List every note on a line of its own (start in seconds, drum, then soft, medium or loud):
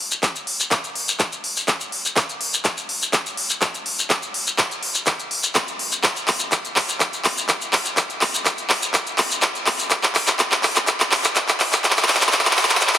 0.11 closed hi-hat soft
0.11 shekere medium
0.23 kick loud
0.23 clap soft
0.23 closed hi-hat medium
0.23 shekere medium
0.36 closed hi-hat soft
0.36 shekere soft
0.47 open hi-hat loud
0.60 closed hi-hat soft
0.60 shekere medium
0.71 kick loud
0.71 clap medium
0.71 closed hi-hat medium
0.71 shekere medium
0.84 closed hi-hat soft
0.84 shekere soft
0.95 open hi-hat medium
1.08 closed hi-hat soft
1.08 shekere medium
1.20 kick loud
1.20 clap medium
1.20 closed hi-hat medium
1.20 shekere medium
1.32 closed hi-hat soft
1.32 shekere soft
1.44 open hi-hat loud
1.57 closed hi-hat soft
1.57 shekere medium
1.68 kick loud
1.68 clap medium
1.68 closed hi-hat medium
1.68 shekere medium
1.80 closed hi-hat soft
1.80 shekere soft
1.92 open hi-hat medium
2.05 closed hi-hat soft
2.05 shekere medium
2.16 kick loud
2.16 clap medium
2.16 closed hi-hat medium
2.16 shekere medium
2.29 closed hi-hat soft
2.29 shekere soft
2.41 open hi-hat loud
2.53 closed hi-hat soft
2.53 shekere medium
2.64 kick loud
2.64 clap medium
2.64 closed hi-hat medium
2.64 shekere medium
2.77 closed hi-hat soft
2.77 shekere soft
2.89 open hi-hat medium
3.02 closed hi-hat soft
3.02 shekere medium
3.13 kick loud
3.13 clap medium
3.13 closed hi-hat medium
3.13 shekere medium
3.26 closed hi-hat soft
3.26 shekere soft
3.37 open hi-hat loud
3.50 closed hi-hat soft
3.50 shekere medium
3.61 kick loud
3.61 clap medium
3.61 closed hi-hat medium
3.61 shekere medium
3.74 closed hi-hat soft
3.74 shekere soft
3.86 open hi-hat medium
3.99 closed hi-hat soft
3.99 shekere medium
4.10 kick loud
4.10 clap medium
4.10 closed hi-hat medium
4.10 shekere medium
4.22 closed hi-hat soft
4.22 shekere soft
4.34 open hi-hat loud
4.47 closed hi-hat soft
4.47 shekere medium
4.58 kick loud
4.58 clap medium
4.58 closed hi-hat medium
4.58 shekere medium
4.71 closed hi-hat soft
4.71 shekere soft
4.83 open hi-hat medium
4.95 closed hi-hat soft
4.95 shekere medium
5.06 kick loud
5.06 clap medium
5.06 closed hi-hat medium
5.06 shekere medium
5.19 closed hi-hat soft
5.19 shekere soft
5.31 open hi-hat loud
5.43 closed hi-hat soft
5.43 shekere medium
5.55 kick loud
5.55 clap medium
5.55 closed hi-hat medium
5.55 shekere medium
5.68 closed hi-hat soft
5.68 shekere soft
5.79 open hi-hat medium
5.92 closed hi-hat soft
5.92 shekere medium
6.04 kick loud
6.04 clap medium
6.04 closed hi-hat medium
6.04 shekere medium
6.16 closed hi-hat soft
6.16 shekere soft
6.28 clap medium
6.28 open hi-hat loud
6.39 closed hi-hat soft
6.39 shekere medium
6.52 kick loud
6.52 clap medium
6.52 closed hi-hat medium
6.52 shekere medium
6.65 closed hi-hat soft
6.65 shekere soft
6.76 clap medium
6.76 open hi-hat medium
6.89 closed hi-hat soft
6.89 shekere medium
7.00 kick loud
7.00 clap medium
7.00 closed hi-hat medium
7.00 shekere medium
7.13 closed hi-hat soft
7.13 shekere soft
7.25 clap medium
7.25 open hi-hat loud
7.37 closed hi-hat soft
7.37 shekere medium
7.49 kick loud
7.49 clap medium
7.49 closed hi-hat medium
7.49 shekere medium
7.61 closed hi-hat soft
7.61 shekere soft
7.73 clap medium
7.73 open hi-hat medium
7.85 closed hi-hat soft
7.85 shekere medium
7.97 kick loud
7.97 clap medium
7.97 closed hi-hat medium
7.97 shekere medium
8.10 closed hi-hat soft
8.10 shekere soft
8.21 clap medium
8.21 open hi-hat loud
8.34 closed hi-hat soft
8.34 shekere medium
8.45 kick loud
8.45 clap medium
8.45 closed hi-hat medium
8.45 shekere medium
8.57 closed hi-hat soft
8.57 shekere soft
8.70 clap medium
8.70 open hi-hat medium
8.83 closed hi-hat soft
8.83 shekere medium
8.94 kick loud
8.94 clap medium
8.94 closed hi-hat medium
8.94 shekere medium
9.07 closed hi-hat soft
9.07 shekere soft
9.18 clap medium
9.18 open hi-hat loud
9.31 closed hi-hat soft
9.31 shekere medium
9.42 kick loud
9.42 clap medium
9.42 closed hi-hat medium
9.42 shekere medium
9.55 closed hi-hat soft
9.55 shekere soft
9.66 clap medium
9.66 open hi-hat medium
9.79 closed hi-hat soft
9.79 shekere medium
9.90 kick loud
9.90 clap medium
9.90 closed hi-hat medium
9.90 shekere medium
10.03 clap medium
10.03 closed hi-hat soft
10.03 shekere soft
10.15 clap medium
10.15 open hi-hat loud
10.27 clap medium
10.27 closed hi-hat soft
10.27 shekere medium
10.39 kick loud
10.39 clap medium
10.39 closed hi-hat medium
10.39 shekere medium
10.52 clap medium
10.52 closed hi-hat soft
10.52 shekere soft
10.63 clap medium
10.63 open hi-hat medium
10.76 clap medium
10.76 closed hi-hat soft
10.76 shekere medium
10.87 kick loud
10.87 clap medium
10.87 closed hi-hat medium
10.87 shekere medium
11.00 clap medium
11.00 closed hi-hat soft
11.00 shekere soft
11.12 clap medium
11.12 open hi-hat loud
11.24 clap medium
11.24 closed hi-hat soft
11.24 shekere medium
11.36 kick loud
11.36 clap loud
11.36 closed hi-hat loud
11.36 shekere medium
11.49 clap medium
11.49 closed hi-hat soft
11.49 shekere soft
11.60 clap loud
11.60 open hi-hat medium
11.73 clap medium
11.73 closed hi-hat soft
11.73 shekere medium
11.84 kick loud
11.84 clap loud
11.84 closed hi-hat loud
11.84 shekere medium
11.91 clap medium
11.97 clap medium
11.97 closed hi-hat soft
11.97 shekere soft
12.03 clap medium
12.08 clap loud
12.08 open hi-hat loud
12.15 clap loud
12.21 clap medium
12.21 closed hi-hat soft
12.21 shekere medium
12.27 clap medium
12.32 kick loud
12.32 clap loud
12.32 closed hi-hat loud
12.32 shekere medium
12.39 clap medium
12.45 clap medium
12.45 closed hi-hat soft
12.45 shekere soft
12.51 clap medium
12.57 clap loud
12.57 open hi-hat medium
12.63 clap medium
12.70 clap medium
12.70 closed hi-hat soft
12.70 shekere medium
12.75 clap loud
12.81 kick loud
12.81 clap loud
12.81 closed hi-hat medium
12.81 shekere medium
12.87 clap medium
12.94 clap medium
12.94 closed hi-hat soft
12.94 shekere soft